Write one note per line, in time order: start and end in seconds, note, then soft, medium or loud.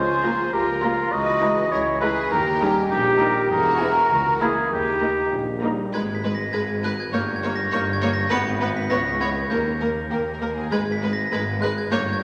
0.00 0.41 C#2 medium
0.00 0.42 C#2 medium
0.00 1.13 F3 medium
0.00 0.52 F4 medium
0.00 1.13 F4 medium
0.00 0.52 G#4 medium
0.00 0.52 C5 medium
0.00 0.55 C5 medium
0.24 0.46 A#3 medium
0.24 0.46 F4 medium
0.24 0.46 A#5 medium
0.53 1.01 C#2 medium
0.53 1.12 F4 medium
0.53 0.66 G4 medium
0.53 1.14 A#4 medium
0.53 1.12 A#4 medium
0.82 1.05 A#3 medium
0.82 1.12 F4 medium
0.82 1.05 F4 medium
0.82 1.05 A#5 medium
1.12 1.60 C#2 medium
1.12 2.29 E3 medium
1.12 1.71 F#4 medium
1.12 2.32 G#4 medium
1.12 1.71 B4 medium
1.12 1.73 D#5 loud
1.12 1.73 D#5 medium
1.42 1.65 G#3 medium
1.42 1.65 E4 medium
1.42 1.64 A#5 medium
1.72 2.19 C#2 medium
1.72 2.20 C#2 medium
1.72 2.30 E4 medium
1.72 1.81 A#4 medium
1.72 2.00 C#5 medium
2.01 2.24 G#3 medium
2.01 2.24 E4 medium
2.01 2.31 G#4 medium
2.01 2.14 B4 medium
2.01 2.32 B4 medium
2.01 2.24 A#5 medium
2.30 2.78 D#2 medium
2.30 2.79 D#2 medium
2.30 3.51 D#3 medium
2.30 2.45 D#4 medium
2.30 2.91 G4 medium
2.30 3.51 G4 medium
2.30 2.70 A#4 medium
2.30 2.69 A#4 loud
2.61 2.84 G3 medium
2.61 2.90 C#4 medium
2.61 2.84 D#4 medium
2.61 2.83 A#5 medium
2.91 3.38 A#1 medium
2.91 3.39 A#1 medium
2.91 3.38 A#2 medium
2.91 3.49 D#4 medium
2.91 3.23 D#4 medium
2.91 3.47 G4 medium
2.91 3.47 G4 loud
3.20 3.43 G3 medium
3.20 3.43 D#4 medium
3.20 3.50 A#4 medium
3.20 3.42 A#5 medium
3.50 3.98 E1 medium
3.50 3.99 E1 medium
3.50 3.98 E2 medium
3.50 4.72 E3 medium
3.50 4.40 F#4 loud
3.50 3.89 G#4 medium
3.50 3.92 G#4 medium
3.50 4.42 A#4 medium
3.50 4.44 A#4 loud
3.81 4.04 B3 medium
3.81 4.04 E4 medium
3.81 4.03 G#5 medium
4.09 4.59 C#2 medium
4.09 4.60 C#2 medium
4.09 4.39 F#4 medium
4.09 5.24 A#4 medium
4.40 4.64 A#3 medium
4.40 4.71 E4 medium
4.40 4.49 E4 medium
4.40 4.64 E4 medium
4.40 4.72 G#4 medium
4.40 4.64 A#5 medium
4.71 5.20 D#2 medium
4.71 5.26 D#3 medium
4.71 5.62 D#4 medium
4.71 5.32 D#4 medium
4.71 5.32 G4 medium
5.02 5.25 A#3 medium
5.02 5.26 D#4 medium
5.02 5.25 A#5 medium
5.33 5.81 A#1 medium
5.33 5.82 A#1 medium
5.33 5.81 A#2 medium
5.33 5.47 D#3 medium
5.62 5.93 G3 medium
5.62 5.85 A#3 medium
5.62 5.86 D#4 medium
5.62 5.86 A#5 medium
5.93 6.47 G#1 medium
5.93 6.47 G#2 medium
5.93 6.02 G#3 medium
5.93 6.02 D#4 medium
5.93 6.01 B4 medium
5.93 6.12 G#6 medium
6.15 6.33 B6 medium
6.24 6.32 G#3 soft
6.24 6.32 D#4 medium
6.24 6.32 B4 medium
6.35 6.53 A#6 medium
6.53 7.06 G#1 medium
6.53 7.07 G#1 medium
6.53 7.06 G#2 medium
6.53 6.62 G#3 medium
6.53 6.61 D#4 medium
6.53 6.61 B4 medium
6.53 6.81 G#6 medium
6.82 6.92 G#3 soft
6.82 6.90 D#4 medium
6.82 6.91 B4 medium
6.82 6.98 F#6 medium
7.00 7.13 G#6 medium
7.12 7.65 G1 medium
7.12 7.65 G2 medium
7.12 7.21 A#3 medium
7.12 7.21 D#4 medium
7.12 7.21 C#5 medium
7.12 7.32 G6 medium
7.36 7.53 G#6 medium
7.43 7.52 A#3 medium
7.43 7.51 D#4 medium
7.43 7.51 C#5 medium
7.56 7.72 A#6 medium
7.71 8.24 G1 medium
7.71 8.25 G1 medium
7.71 8.25 G2 medium
7.71 7.82 A#3 medium
7.71 7.80 D#4 medium
7.71 7.79 C#5 medium
7.71 7.91 G6 loud
7.93 8.11 G#6 medium
8.02 8.11 A#3 medium
8.02 8.11 D#4 medium
8.02 8.10 C#5 medium
8.13 8.31 A#6 loud
8.30 8.83 G#1 medium
8.30 8.84 G#1 medium
8.30 8.84 G#2 medium
8.30 8.39 B3 medium
8.30 8.39 D#4 medium
8.30 8.38 B4 medium
8.30 8.73 C#7 loud
8.61 8.69 B3 medium
8.61 8.70 D#4 medium
8.61 8.69 B4 medium
8.77 8.90 B6 medium
8.90 9.44 C#2 medium
8.90 8.98 B3 medium
8.90 8.98 E4 medium
8.90 8.99 C#5 medium
8.90 9.18 A#6 loud
9.20 9.28 B3 medium
9.20 9.28 E4 medium
9.20 9.29 C#5 medium
9.20 9.49 G#6 medium
9.50 10.05 D#2 medium
9.50 9.58 A#3 medium
9.50 9.58 D#4 medium
9.50 9.60 A#4 medium
9.50 10.38 G6 medium
9.80 9.89 A#3 soft
9.80 9.89 D#4 soft
9.80 9.88 A#4 soft
10.10 10.66 D#2 medium
10.10 10.19 A#3 soft
10.10 10.18 G4 medium
10.10 10.20 A#4 soft
10.33 10.41 A#4 medium
10.41 10.49 A#3 soft
10.41 10.49 A#4 soft
10.54 10.73 G#4 medium
10.72 11.26 G#1 medium
10.72 11.26 G#2 medium
10.72 10.80 G#3 medium
10.72 10.81 D#4 medium
10.72 10.81 B4 medium
10.72 10.91 G#6 medium
10.92 11.11 B6 medium
11.02 11.10 G#3 medium
11.02 11.12 D#4 medium
11.02 11.11 B4 medium
11.13 11.32 A#6 medium
11.32 11.86 G#1 medium
11.32 11.77 G#1 medium
11.32 11.86 G#2 medium
11.32 11.40 G#3 medium
11.32 11.41 D#4 medium
11.32 11.41 B4 medium
11.32 11.61 G#6 medium
11.61 11.69 G#3 medium
11.61 11.71 D#4 medium
11.61 11.71 B4 medium
11.61 11.76 F#6 medium
11.78 11.92 G#6 medium
11.92 12.23 G1 medium
11.92 12.23 G2 medium
11.92 12.00 A#3 medium
11.92 12.01 D#4 medium
11.92 12.00 C#5 medium
11.92 12.11 G6 loud
12.13 12.23 G#6 medium